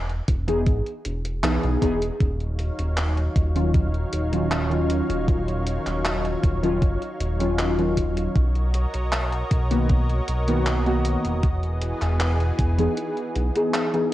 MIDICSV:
0, 0, Header, 1, 5, 480
1, 0, Start_track
1, 0, Key_signature, -6, "minor"
1, 0, Tempo, 769231
1, 1375, Time_signature, 4, 2, 24, 8
1, 8822, End_track
2, 0, Start_track
2, 0, Title_t, "Analog synth pad"
2, 0, Program_c, 0, 89
2, 1372, Note_on_c, 0, 77, 89
2, 1373, Note_on_c, 0, 63, 73
2, 1374, Note_on_c, 0, 51, 81
2, 1374, Note_on_c, 0, 54, 73
2, 1374, Note_on_c, 0, 73, 74
2, 5189, Note_off_c, 0, 51, 0
2, 5189, Note_off_c, 0, 54, 0
2, 5189, Note_off_c, 0, 63, 0
2, 5189, Note_off_c, 0, 77, 0
2, 5190, Note_off_c, 0, 73, 0
2, 5217, Note_on_c, 0, 66, 73
2, 5217, Note_on_c, 0, 70, 72
2, 5217, Note_on_c, 0, 73, 74
2, 5217, Note_on_c, 0, 75, 88
2, 7117, Note_off_c, 0, 70, 0
2, 7117, Note_off_c, 0, 73, 0
2, 7137, Note_on_c, 0, 52, 82
2, 7138, Note_on_c, 0, 59, 76
2, 7138, Note_on_c, 0, 68, 77
2, 8822, Note_off_c, 0, 52, 0
2, 8822, Note_off_c, 0, 59, 0
2, 8822, Note_off_c, 0, 66, 0
2, 8822, Note_off_c, 0, 68, 0
2, 8822, Note_off_c, 0, 75, 0
2, 8822, End_track
3, 0, Start_track
3, 0, Title_t, "Synth keys"
3, 0, Program_c, 1, 88
3, 294, Note_on_c, 1, 52, 79
3, 296, Note_on_c, 1, 59, 73
3, 299, Note_on_c, 1, 63, 70
3, 303, Note_on_c, 1, 68, 87
3, 391, Note_off_c, 1, 52, 0
3, 392, Note_off_c, 1, 59, 0
3, 394, Note_off_c, 1, 63, 0
3, 395, Note_off_c, 1, 68, 0
3, 889, Note_on_c, 1, 52, 84
3, 893, Note_on_c, 1, 59, 76
3, 895, Note_on_c, 1, 63, 76
3, 899, Note_on_c, 1, 68, 92
3, 1104, Note_off_c, 1, 52, 0
3, 1106, Note_off_c, 1, 59, 0
3, 1107, Note_off_c, 1, 63, 0
3, 1109, Note_off_c, 1, 68, 0
3, 1129, Note_on_c, 1, 52, 86
3, 1133, Note_on_c, 1, 59, 82
3, 1136, Note_on_c, 1, 63, 79
3, 1138, Note_on_c, 1, 68, 98
3, 1233, Note_off_c, 1, 52, 0
3, 1235, Note_off_c, 1, 59, 0
3, 1237, Note_off_c, 1, 63, 0
3, 1238, Note_off_c, 1, 68, 0
3, 2214, Note_on_c, 1, 51, 79
3, 2217, Note_on_c, 1, 54, 73
3, 2219, Note_on_c, 1, 61, 72
3, 2223, Note_on_c, 1, 65, 88
3, 2311, Note_off_c, 1, 51, 0
3, 2313, Note_off_c, 1, 54, 0
3, 2314, Note_off_c, 1, 61, 0
3, 2315, Note_off_c, 1, 65, 0
3, 2694, Note_on_c, 1, 51, 70
3, 2697, Note_on_c, 1, 54, 67
3, 2700, Note_on_c, 1, 61, 64
3, 2703, Note_on_c, 1, 65, 80
3, 2907, Note_off_c, 1, 51, 0
3, 2908, Note_off_c, 1, 54, 0
3, 2910, Note_off_c, 1, 61, 0
3, 2911, Note_off_c, 1, 65, 0
3, 2929, Note_on_c, 1, 51, 71
3, 2935, Note_on_c, 1, 54, 66
3, 2941, Note_on_c, 1, 61, 65
3, 2947, Note_on_c, 1, 65, 81
3, 4104, Note_off_c, 1, 51, 0
3, 4107, Note_off_c, 1, 54, 0
3, 4110, Note_off_c, 1, 61, 0
3, 4113, Note_off_c, 1, 65, 0
3, 4134, Note_on_c, 1, 51, 83
3, 4136, Note_on_c, 1, 54, 72
3, 4140, Note_on_c, 1, 61, 72
3, 4143, Note_on_c, 1, 65, 88
3, 4231, Note_off_c, 1, 51, 0
3, 4232, Note_off_c, 1, 54, 0
3, 4234, Note_off_c, 1, 61, 0
3, 4236, Note_off_c, 1, 65, 0
3, 4612, Note_on_c, 1, 51, 72
3, 4616, Note_on_c, 1, 54, 67
3, 4618, Note_on_c, 1, 61, 67
3, 4623, Note_on_c, 1, 65, 80
3, 4826, Note_off_c, 1, 51, 0
3, 4828, Note_off_c, 1, 54, 0
3, 4829, Note_off_c, 1, 61, 0
3, 4831, Note_off_c, 1, 65, 0
3, 4852, Note_on_c, 1, 51, 74
3, 4855, Note_on_c, 1, 54, 65
3, 4858, Note_on_c, 1, 61, 67
3, 4862, Note_on_c, 1, 65, 81
3, 5197, Note_off_c, 1, 51, 0
3, 5199, Note_off_c, 1, 54, 0
3, 5201, Note_off_c, 1, 61, 0
3, 5202, Note_off_c, 1, 65, 0
3, 6053, Note_on_c, 1, 51, 83
3, 6057, Note_on_c, 1, 58, 73
3, 6059, Note_on_c, 1, 59, 76
3, 6063, Note_on_c, 1, 66, 91
3, 6151, Note_off_c, 1, 51, 0
3, 6152, Note_off_c, 1, 58, 0
3, 6154, Note_off_c, 1, 59, 0
3, 6155, Note_off_c, 1, 66, 0
3, 6535, Note_on_c, 1, 51, 73
3, 6538, Note_on_c, 1, 58, 68
3, 6541, Note_on_c, 1, 59, 67
3, 6544, Note_on_c, 1, 66, 81
3, 6747, Note_off_c, 1, 51, 0
3, 6749, Note_off_c, 1, 58, 0
3, 6750, Note_off_c, 1, 59, 0
3, 6752, Note_off_c, 1, 66, 0
3, 6775, Note_on_c, 1, 51, 74
3, 6778, Note_on_c, 1, 58, 66
3, 6781, Note_on_c, 1, 59, 69
3, 6784, Note_on_c, 1, 66, 84
3, 7119, Note_off_c, 1, 51, 0
3, 7121, Note_off_c, 1, 58, 0
3, 7122, Note_off_c, 1, 59, 0
3, 7124, Note_off_c, 1, 66, 0
3, 7974, Note_on_c, 1, 52, 80
3, 7977, Note_on_c, 1, 59, 77
3, 7980, Note_on_c, 1, 63, 76
3, 7983, Note_on_c, 1, 68, 88
3, 8071, Note_off_c, 1, 52, 0
3, 8072, Note_off_c, 1, 59, 0
3, 8074, Note_off_c, 1, 63, 0
3, 8076, Note_off_c, 1, 68, 0
3, 8456, Note_on_c, 1, 52, 73
3, 8459, Note_on_c, 1, 59, 67
3, 8462, Note_on_c, 1, 63, 67
3, 8464, Note_on_c, 1, 68, 81
3, 8668, Note_off_c, 1, 52, 0
3, 8669, Note_off_c, 1, 59, 0
3, 8671, Note_off_c, 1, 63, 0
3, 8672, Note_off_c, 1, 68, 0
3, 8694, Note_on_c, 1, 52, 76
3, 8697, Note_on_c, 1, 59, 68
3, 8700, Note_on_c, 1, 63, 68
3, 8703, Note_on_c, 1, 68, 81
3, 8822, Note_off_c, 1, 52, 0
3, 8822, Note_off_c, 1, 59, 0
3, 8822, Note_off_c, 1, 63, 0
3, 8822, Note_off_c, 1, 68, 0
3, 8822, End_track
4, 0, Start_track
4, 0, Title_t, "Analog synth bass"
4, 0, Program_c, 2, 38
4, 0, Note_on_c, 2, 28, 75
4, 128, Note_off_c, 2, 28, 0
4, 175, Note_on_c, 2, 28, 93
4, 416, Note_on_c, 2, 32, 90
4, 425, Note_off_c, 2, 28, 0
4, 508, Note_off_c, 2, 32, 0
4, 658, Note_on_c, 2, 28, 86
4, 892, Note_off_c, 2, 28, 0
4, 896, Note_on_c, 2, 35, 95
4, 988, Note_off_c, 2, 35, 0
4, 1020, Note_on_c, 2, 35, 97
4, 1106, Note_off_c, 2, 35, 0
4, 1135, Note_on_c, 2, 28, 86
4, 1316, Note_off_c, 2, 28, 0
4, 1376, Note_on_c, 2, 27, 92
4, 1689, Note_off_c, 2, 27, 0
4, 1741, Note_on_c, 2, 27, 77
4, 2048, Note_off_c, 2, 27, 0
4, 2096, Note_on_c, 2, 27, 94
4, 2528, Note_off_c, 2, 27, 0
4, 2575, Note_on_c, 2, 27, 78
4, 3129, Note_off_c, 2, 27, 0
4, 3179, Note_on_c, 2, 27, 86
4, 3608, Note_off_c, 2, 27, 0
4, 3659, Note_on_c, 2, 27, 78
4, 3967, Note_off_c, 2, 27, 0
4, 4015, Note_on_c, 2, 27, 95
4, 4256, Note_on_c, 2, 30, 91
4, 4265, Note_off_c, 2, 27, 0
4, 4348, Note_off_c, 2, 30, 0
4, 4495, Note_on_c, 2, 27, 90
4, 5167, Note_off_c, 2, 27, 0
4, 5215, Note_on_c, 2, 35, 95
4, 5528, Note_off_c, 2, 35, 0
4, 5578, Note_on_c, 2, 35, 76
4, 5887, Note_off_c, 2, 35, 0
4, 5936, Note_on_c, 2, 35, 93
4, 6368, Note_off_c, 2, 35, 0
4, 6414, Note_on_c, 2, 35, 77
4, 6968, Note_off_c, 2, 35, 0
4, 7019, Note_on_c, 2, 28, 85
4, 7448, Note_off_c, 2, 28, 0
4, 7499, Note_on_c, 2, 28, 78
4, 7808, Note_off_c, 2, 28, 0
4, 7855, Note_on_c, 2, 28, 95
4, 8036, Note_off_c, 2, 28, 0
4, 8335, Note_on_c, 2, 35, 86
4, 8427, Note_off_c, 2, 35, 0
4, 8822, End_track
5, 0, Start_track
5, 0, Title_t, "Drums"
5, 58, Note_on_c, 9, 42, 25
5, 121, Note_off_c, 9, 42, 0
5, 174, Note_on_c, 9, 42, 84
5, 175, Note_on_c, 9, 36, 101
5, 236, Note_off_c, 9, 42, 0
5, 237, Note_off_c, 9, 36, 0
5, 299, Note_on_c, 9, 42, 50
5, 361, Note_off_c, 9, 42, 0
5, 414, Note_on_c, 9, 42, 51
5, 415, Note_on_c, 9, 36, 114
5, 476, Note_off_c, 9, 42, 0
5, 478, Note_off_c, 9, 36, 0
5, 539, Note_on_c, 9, 42, 25
5, 601, Note_off_c, 9, 42, 0
5, 655, Note_on_c, 9, 42, 84
5, 717, Note_off_c, 9, 42, 0
5, 780, Note_on_c, 9, 42, 51
5, 842, Note_off_c, 9, 42, 0
5, 896, Note_on_c, 9, 39, 118
5, 896, Note_on_c, 9, 42, 50
5, 958, Note_off_c, 9, 39, 0
5, 958, Note_off_c, 9, 42, 0
5, 1019, Note_on_c, 9, 42, 25
5, 1082, Note_off_c, 9, 42, 0
5, 1135, Note_on_c, 9, 36, 62
5, 1136, Note_on_c, 9, 42, 87
5, 1198, Note_off_c, 9, 36, 0
5, 1198, Note_off_c, 9, 42, 0
5, 1260, Note_on_c, 9, 42, 49
5, 1323, Note_off_c, 9, 42, 0
5, 1376, Note_on_c, 9, 36, 113
5, 1376, Note_on_c, 9, 42, 47
5, 1438, Note_off_c, 9, 36, 0
5, 1438, Note_off_c, 9, 42, 0
5, 1500, Note_on_c, 9, 42, 24
5, 1563, Note_off_c, 9, 42, 0
5, 1615, Note_on_c, 9, 42, 87
5, 1678, Note_off_c, 9, 42, 0
5, 1739, Note_on_c, 9, 42, 49
5, 1802, Note_off_c, 9, 42, 0
5, 1855, Note_on_c, 9, 39, 113
5, 1855, Note_on_c, 9, 42, 48
5, 1917, Note_off_c, 9, 39, 0
5, 1917, Note_off_c, 9, 42, 0
5, 1980, Note_on_c, 9, 42, 24
5, 2042, Note_off_c, 9, 42, 0
5, 2096, Note_on_c, 9, 36, 102
5, 2096, Note_on_c, 9, 42, 81
5, 2158, Note_off_c, 9, 36, 0
5, 2158, Note_off_c, 9, 42, 0
5, 2220, Note_on_c, 9, 42, 47
5, 2282, Note_off_c, 9, 42, 0
5, 2335, Note_on_c, 9, 42, 49
5, 2336, Note_on_c, 9, 36, 114
5, 2398, Note_off_c, 9, 36, 0
5, 2398, Note_off_c, 9, 42, 0
5, 2459, Note_on_c, 9, 42, 24
5, 2522, Note_off_c, 9, 42, 0
5, 2575, Note_on_c, 9, 42, 83
5, 2637, Note_off_c, 9, 42, 0
5, 2700, Note_on_c, 9, 42, 49
5, 2762, Note_off_c, 9, 42, 0
5, 2816, Note_on_c, 9, 39, 111
5, 2816, Note_on_c, 9, 42, 48
5, 2878, Note_off_c, 9, 39, 0
5, 2878, Note_off_c, 9, 42, 0
5, 2940, Note_on_c, 9, 42, 23
5, 3003, Note_off_c, 9, 42, 0
5, 3056, Note_on_c, 9, 42, 85
5, 3118, Note_off_c, 9, 42, 0
5, 3180, Note_on_c, 9, 42, 47
5, 3242, Note_off_c, 9, 42, 0
5, 3295, Note_on_c, 9, 36, 112
5, 3296, Note_on_c, 9, 42, 49
5, 3358, Note_off_c, 9, 36, 0
5, 3358, Note_off_c, 9, 42, 0
5, 3420, Note_on_c, 9, 42, 25
5, 3483, Note_off_c, 9, 42, 0
5, 3535, Note_on_c, 9, 42, 86
5, 3598, Note_off_c, 9, 42, 0
5, 3660, Note_on_c, 9, 39, 36
5, 3660, Note_on_c, 9, 42, 49
5, 3722, Note_off_c, 9, 39, 0
5, 3722, Note_off_c, 9, 42, 0
5, 3775, Note_on_c, 9, 39, 110
5, 3775, Note_on_c, 9, 42, 49
5, 3838, Note_off_c, 9, 39, 0
5, 3838, Note_off_c, 9, 42, 0
5, 3899, Note_on_c, 9, 42, 25
5, 3961, Note_off_c, 9, 42, 0
5, 4015, Note_on_c, 9, 36, 97
5, 4015, Note_on_c, 9, 42, 82
5, 4077, Note_off_c, 9, 36, 0
5, 4077, Note_off_c, 9, 42, 0
5, 4139, Note_on_c, 9, 42, 46
5, 4201, Note_off_c, 9, 42, 0
5, 4255, Note_on_c, 9, 36, 110
5, 4255, Note_on_c, 9, 42, 50
5, 4317, Note_off_c, 9, 36, 0
5, 4318, Note_off_c, 9, 42, 0
5, 4380, Note_on_c, 9, 42, 24
5, 4442, Note_off_c, 9, 42, 0
5, 4495, Note_on_c, 9, 42, 84
5, 4558, Note_off_c, 9, 42, 0
5, 4620, Note_on_c, 9, 42, 48
5, 4682, Note_off_c, 9, 42, 0
5, 4736, Note_on_c, 9, 39, 107
5, 4736, Note_on_c, 9, 42, 47
5, 4798, Note_off_c, 9, 39, 0
5, 4798, Note_off_c, 9, 42, 0
5, 4859, Note_on_c, 9, 42, 23
5, 4921, Note_off_c, 9, 42, 0
5, 4975, Note_on_c, 9, 36, 58
5, 4975, Note_on_c, 9, 42, 83
5, 5037, Note_off_c, 9, 36, 0
5, 5037, Note_off_c, 9, 42, 0
5, 5098, Note_on_c, 9, 42, 48
5, 5161, Note_off_c, 9, 42, 0
5, 5214, Note_on_c, 9, 42, 48
5, 5215, Note_on_c, 9, 36, 111
5, 5276, Note_off_c, 9, 42, 0
5, 5277, Note_off_c, 9, 36, 0
5, 5338, Note_on_c, 9, 42, 25
5, 5400, Note_off_c, 9, 42, 0
5, 5454, Note_on_c, 9, 42, 86
5, 5516, Note_off_c, 9, 42, 0
5, 5577, Note_on_c, 9, 42, 50
5, 5640, Note_off_c, 9, 42, 0
5, 5693, Note_on_c, 9, 39, 110
5, 5693, Note_on_c, 9, 42, 50
5, 5755, Note_off_c, 9, 39, 0
5, 5755, Note_off_c, 9, 42, 0
5, 5818, Note_on_c, 9, 42, 26
5, 5880, Note_off_c, 9, 42, 0
5, 5933, Note_on_c, 9, 42, 84
5, 5935, Note_on_c, 9, 36, 94
5, 5996, Note_off_c, 9, 42, 0
5, 5997, Note_off_c, 9, 36, 0
5, 6057, Note_on_c, 9, 42, 50
5, 6120, Note_off_c, 9, 42, 0
5, 6173, Note_on_c, 9, 42, 51
5, 6175, Note_on_c, 9, 36, 110
5, 6235, Note_off_c, 9, 42, 0
5, 6237, Note_off_c, 9, 36, 0
5, 6298, Note_on_c, 9, 42, 25
5, 6361, Note_off_c, 9, 42, 0
5, 6414, Note_on_c, 9, 42, 87
5, 6476, Note_off_c, 9, 42, 0
5, 6538, Note_on_c, 9, 42, 51
5, 6600, Note_off_c, 9, 42, 0
5, 6654, Note_on_c, 9, 39, 108
5, 6654, Note_on_c, 9, 42, 50
5, 6716, Note_off_c, 9, 39, 0
5, 6716, Note_off_c, 9, 42, 0
5, 6778, Note_on_c, 9, 42, 24
5, 6841, Note_off_c, 9, 42, 0
5, 6895, Note_on_c, 9, 42, 86
5, 6957, Note_off_c, 9, 42, 0
5, 7018, Note_on_c, 9, 42, 49
5, 7081, Note_off_c, 9, 42, 0
5, 7134, Note_on_c, 9, 42, 52
5, 7135, Note_on_c, 9, 36, 111
5, 7196, Note_off_c, 9, 42, 0
5, 7198, Note_off_c, 9, 36, 0
5, 7258, Note_on_c, 9, 42, 27
5, 7321, Note_off_c, 9, 42, 0
5, 7374, Note_on_c, 9, 42, 90
5, 7436, Note_off_c, 9, 42, 0
5, 7499, Note_on_c, 9, 39, 35
5, 7499, Note_on_c, 9, 42, 54
5, 7561, Note_off_c, 9, 39, 0
5, 7561, Note_off_c, 9, 42, 0
5, 7615, Note_on_c, 9, 39, 113
5, 7615, Note_on_c, 9, 42, 53
5, 7677, Note_off_c, 9, 39, 0
5, 7677, Note_off_c, 9, 42, 0
5, 7739, Note_on_c, 9, 42, 27
5, 7801, Note_off_c, 9, 42, 0
5, 7854, Note_on_c, 9, 42, 90
5, 7855, Note_on_c, 9, 36, 96
5, 7916, Note_off_c, 9, 42, 0
5, 7918, Note_off_c, 9, 36, 0
5, 7978, Note_on_c, 9, 42, 50
5, 8041, Note_off_c, 9, 42, 0
5, 8094, Note_on_c, 9, 42, 52
5, 8157, Note_off_c, 9, 42, 0
5, 8218, Note_on_c, 9, 42, 26
5, 8280, Note_off_c, 9, 42, 0
5, 8333, Note_on_c, 9, 42, 87
5, 8395, Note_off_c, 9, 42, 0
5, 8458, Note_on_c, 9, 42, 52
5, 8520, Note_off_c, 9, 42, 0
5, 8573, Note_on_c, 9, 39, 110
5, 8573, Note_on_c, 9, 42, 52
5, 8635, Note_off_c, 9, 39, 0
5, 8635, Note_off_c, 9, 42, 0
5, 8698, Note_on_c, 9, 42, 26
5, 8760, Note_off_c, 9, 42, 0
5, 8822, End_track
0, 0, End_of_file